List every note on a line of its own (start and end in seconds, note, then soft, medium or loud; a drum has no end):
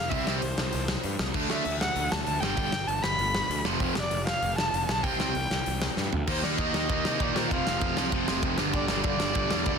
0.00 0.10 F5 loud
0.09 0.23 C2 medium
0.09 0.23 C3 medium
0.09 0.24 G3 medium
0.09 0.24 C4 loud
0.09 0.40 E5 loud
0.09 kick loud
0.09 open hi-hat medium
0.26 0.38 C2 medium
0.26 0.39 C3 medium
0.26 0.39 G3 loud
0.26 0.39 C4 loud
0.26 snare loud
0.40 0.54 C2 medium
0.40 1.14 C5 medium
0.40 open hi-hat medium
0.58 0.69 C2 medium
0.58 snare loud
0.73 0.95 C2 medium
0.73 open hi-hat medium
0.88 snare loud
1.03 1.15 G2 medium
1.03 open hi-hat medium
1.19 1.30 C2 medium
1.19 snare loud
1.34 1.45 D2 medium
1.34 1.47 D3 medium
1.34 1.47 A3 medium
1.34 1.47 D4 loud
1.34 kick loud
1.34 crash medium
1.49 1.60 D2 medium
1.49 1.62 D3 medium
1.49 1.62 A3 loud
1.49 1.63 D4 loud
1.49 1.79 E5 medium
1.49 snare loud
1.65 1.87 D2 medium
1.65 open hi-hat medium
1.80 2.12 F#5 loud
1.80 snare loud
1.96 2.07 D2 medium
1.96 open hi-hat medium
2.11 2.23 D2 medium
2.11 2.25 A5 medium
2.11 snare loud
2.25 2.38 D2 medium
2.25 2.41 A5 loud
2.25 open hi-hat medium
2.40 2.53 G1 medium
2.40 2.55 G2 medium
2.40 2.55 D3 medium
2.40 2.88 G5 loud
2.40 snare loud
2.44 2.56 G3 loud
2.57 2.69 G1 loud
2.57 2.70 G2 medium
2.57 2.71 D3 medium
2.57 2.71 G3 loud
2.57 kick loud
2.57 open hi-hat medium
2.72 2.84 G1 medium
2.72 snare loud
2.87 2.99 G1 medium
2.87 3.04 A5 loud
2.87 open hi-hat medium
3.02 3.14 G1 medium
3.02 3.65 B5 loud
3.02 snare loud
3.18 3.40 G1 medium
3.18 open hi-hat medium
3.35 snare loud
3.50 3.60 D2 medium
3.50 open hi-hat medium
3.65 3.76 F1 medium
3.65 3.78 F2 loud
3.65 3.78 C3 medium
3.65 3.78 F3 loud
3.65 snare loud
3.80 3.91 F1 medium
3.80 3.94 F2 medium
3.80 3.94 C3 loud
3.80 3.94 F3 loud
3.80 kick loud
3.80 open hi-hat medium
3.95 4.07 F1 medium
3.95 4.26 D5 loud
3.95 snare loud
4.11 4.33 F1 medium
4.11 open hi-hat medium
4.27 4.56 F5 loud
4.27 snare loud
4.42 4.53 F1 medium
4.42 open hi-hat medium
4.58 4.68 F1 medium
4.58 4.87 A5 medium
4.58 snare loud
4.73 4.84 F1 medium
4.73 open hi-hat medium
4.89 5.04 B1 medium
4.89 5.05 A5 loud
4.89 snare loud
5.03 5.15 C2 medium
5.03 5.16 C3 medium
5.03 5.16 G3 medium
5.03 5.16 C4 loud
5.03 5.96 G5 medium
5.03 kick loud
5.03 open hi-hat medium
5.19 5.30 C2 medium
5.19 5.32 C3 medium
5.19 5.32 G3 loud
5.19 5.32 C4 loud
5.19 snare loud
5.35 5.46 C2 medium
5.35 open hi-hat medium
5.50 5.61 C2 medium
5.50 snare loud
5.66 5.88 C2 medium
5.66 open hi-hat medium
5.82 snare loud
5.97 6.08 G2 medium
5.97 snare medium
6.13 6.23 D2 medium
6.13 floor tom medium
6.27 6.42 D#2 medium
6.27 6.43 D#3 medium
6.27 6.43 A#3 loud
6.27 6.42 D#4 loud
6.27 6.45 C5 loud
6.27 kick loud
6.27 crash loud
6.43 6.57 D#2 medium
6.43 6.57 D#3 medium
6.43 6.58 A#3 medium
6.43 6.58 D#4 medium
6.43 6.57 D5 medium
6.43 snare loud
6.58 6.73 D#2 medium
6.58 6.73 D#3 medium
6.58 6.73 A#3 medium
6.58 6.72 D#4 loud
6.58 7.22 D#5 medium
6.58 kick loud
6.58 ride medium
6.73 6.88 D#2 medium
6.73 6.88 D#3 medium
6.73 6.89 A#3 medium
6.73 6.89 D#4 loud
6.73 snare loud
6.89 7.04 D#2 medium
6.89 7.04 D#3 medium
6.89 7.03 A#3 medium
6.89 7.02 D#4 loud
6.89 kick loud
6.89 ride medium
7.04 7.19 C3 medium
7.04 7.19 D#3 medium
7.04 7.19 A#3 medium
7.04 7.20 D#4 loud
7.04 snare loud
7.20 7.34 A#2 medium
7.20 7.35 D#3 medium
7.20 7.35 A#3 medium
7.20 7.34 D#4 medium
7.20 7.38 D5 medium
7.20 kick loud
7.20 ride medium
7.35 7.50 A#2 loud
7.35 7.50 D#3 medium
7.35 7.50 A#3 medium
7.35 7.49 D#4 medium
7.35 7.50 C5 medium
7.35 snare loud
7.50 7.66 F1 medium
7.50 7.66 F2 loud
7.50 7.66 C3 loud
7.50 7.65 F3 loud
7.50 8.10 F5 loud
7.50 kick loud
7.50 ride medium
7.66 7.81 F1 medium
7.66 7.80 F2 medium
7.66 7.81 C3 medium
7.66 7.81 F3 loud
7.66 snare loud
7.81 7.96 F1 medium
7.81 7.96 F2 loud
7.81 7.96 C3 medium
7.81 7.95 F3 loud
7.81 kick loud
7.81 ride medium
7.96 8.12 C2 medium
7.96 8.10 F2 medium
7.96 8.10 C3 medium
7.96 8.11 F3 medium
7.96 snare loud
8.11 8.27 F1 medium
8.11 8.28 F2 medium
8.11 8.28 C3 medium
8.11 8.27 F3 loud
8.11 kick loud
8.11 ride medium
8.28 8.42 F1 medium
8.28 8.42 F2 medium
8.28 8.43 C3 medium
8.28 8.43 F3 loud
8.28 snare loud
8.43 8.58 F1 medium
8.43 8.57 F2 medium
8.43 8.58 C3 medium
8.43 8.58 F3 medium
8.43 kick loud
8.43 ride medium
8.58 8.73 G1 loud
8.58 8.74 G2 loud
8.58 8.74 D3 loud
8.58 8.73 G3 loud
8.58 snare loud
8.73 8.88 G1 medium
8.73 8.89 G2 medium
8.73 8.89 D3 loud
8.73 8.90 G3 loud
8.73 8.89 D5 medium
8.73 kick loud
8.73 ride medium
8.88 9.04 G1 medium
8.88 9.04 G2 medium
8.88 9.03 D3 medium
8.88 9.03 G3 loud
8.88 9.05 D5 medium
8.88 snare loud
9.04 9.19 G1 medium
9.04 9.17 G2 medium
9.04 9.18 D3 medium
9.04 9.20 G3 loud
9.04 9.65 D5 loud
9.04 kick loud
9.04 ride medium
9.18 9.35 G1 medium
9.18 9.34 G2 medium
9.18 9.34 D3 medium
9.18 9.34 G3 medium
9.18 snare loud
9.34 9.50 G1 loud
9.34 9.49 G2 medium
9.34 9.50 D3 medium
9.34 9.52 G3 medium
9.34 kick loud
9.34 ride medium
9.50 9.65 E2 medium
9.50 9.67 G2 medium
9.50 9.65 D3 loud
9.50 9.66 G3 loud
9.50 snare loud
9.66 9.78 D2 medium
9.66 9.78 G2 medium
9.66 9.78 D3 medium
9.66 9.78 G3 medium
9.66 9.78 D5 medium
9.66 kick loud
9.66 ride medium